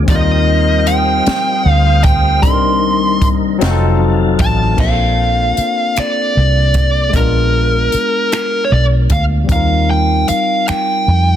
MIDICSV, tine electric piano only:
0, 0, Header, 1, 2, 480
1, 0, Start_track
1, 0, Key_signature, -2, "major"
1, 0, Tempo, 784314
1, 48, Time_signature, 6, 3, 24, 8
1, 6954, End_track
2, 0, Start_track
2, 0, Title_t, "Tine electric piano"
2, 0, Program_c, 0, 4
2, 0, Control_c, 0, 64, 127
2, 21, Note_on_c, 0, 53, 54
2, 38, Note_on_c, 0, 60, 58
2, 56, Control_c, 0, 64, 0
2, 57, Note_on_c, 0, 63, 62
2, 59, Note_on_c, 0, 55, 59
2, 74, Note_off_c, 0, 53, 0
2, 74, Note_on_c, 0, 65, 62
2, 91, Note_on_c, 0, 70, 67
2, 158, Control_c, 0, 64, 127
2, 1458, Note_off_c, 0, 60, 0
2, 1468, Note_off_c, 0, 63, 0
2, 1469, Note_off_c, 0, 55, 0
2, 1476, Note_off_c, 0, 65, 0
2, 1478, Note_on_c, 0, 55, 68
2, 1485, Note_off_c, 0, 70, 0
2, 1487, Note_on_c, 0, 60, 58
2, 1495, Control_c, 0, 64, 0
2, 1495, Note_on_c, 0, 62, 56
2, 1506, Note_on_c, 0, 63, 58
2, 1512, Note_on_c, 0, 69, 60
2, 1540, Note_off_c, 0, 69, 0
2, 1553, Note_on_c, 0, 70, 68
2, 1598, Control_c, 0, 64, 127
2, 2194, Note_on_c, 0, 54, 91
2, 2196, Note_off_c, 0, 60, 0
2, 2203, Note_off_c, 0, 55, 0
2, 2203, Note_on_c, 0, 60, 78
2, 2207, Note_off_c, 0, 63, 0
2, 2211, Note_off_c, 0, 62, 0
2, 2214, Control_c, 0, 64, 0
2, 2214, Note_on_c, 0, 63, 80
2, 2219, Note_on_c, 0, 65, 79
2, 2229, Note_on_c, 0, 66, 79
2, 2240, Note_off_c, 0, 70, 0
2, 2258, Note_off_c, 0, 66, 0
2, 2269, Note_on_c, 0, 69, 96
2, 2305, Control_c, 0, 64, 127
2, 2899, Note_on_c, 0, 58, 57
2, 2909, Note_off_c, 0, 60, 0
2, 2917, Note_on_c, 0, 60, 46
2, 2921, Note_off_c, 0, 54, 0
2, 2931, Note_off_c, 0, 63, 0
2, 2933, Note_off_c, 0, 65, 0
2, 2935, Control_c, 0, 64, 0
2, 2935, Note_on_c, 0, 62, 50
2, 2953, Note_on_c, 0, 65, 50
2, 2958, Note_off_c, 0, 69, 0
2, 2969, Note_on_c, 0, 67, 46
2, 2988, Note_off_c, 0, 67, 0
2, 3010, Note_on_c, 0, 69, 56
2, 3053, Control_c, 0, 64, 127
2, 4329, Note_off_c, 0, 58, 0
2, 4338, Note_off_c, 0, 60, 0
2, 4340, Note_on_c, 0, 56, 58
2, 4347, Note_off_c, 0, 62, 0
2, 4356, Note_off_c, 0, 65, 0
2, 4356, Note_on_c, 0, 59, 47
2, 4375, Control_c, 0, 64, 0
2, 4375, Note_on_c, 0, 62, 49
2, 4384, Note_off_c, 0, 69, 0
2, 4392, Note_on_c, 0, 65, 54
2, 4412, Note_on_c, 0, 70, 59
2, 4480, Control_c, 0, 64, 127
2, 5770, Note_off_c, 0, 56, 0
2, 5777, Note_off_c, 0, 59, 0
2, 5777, Note_on_c, 0, 55, 53
2, 5787, Note_off_c, 0, 62, 0
2, 5795, Note_off_c, 0, 65, 0
2, 5796, Note_on_c, 0, 60, 50
2, 5805, Note_off_c, 0, 70, 0
2, 5814, Note_on_c, 0, 63, 51
2, 5815, Control_c, 0, 64, 0
2, 5831, Note_on_c, 0, 65, 50
2, 5848, Note_on_c, 0, 70, 61
2, 5916, Control_c, 0, 64, 127
2, 6954, Note_off_c, 0, 55, 0
2, 6954, Note_off_c, 0, 60, 0
2, 6954, Note_off_c, 0, 63, 0
2, 6954, Note_off_c, 0, 65, 0
2, 6954, Note_off_c, 0, 70, 0
2, 6954, End_track
0, 0, End_of_file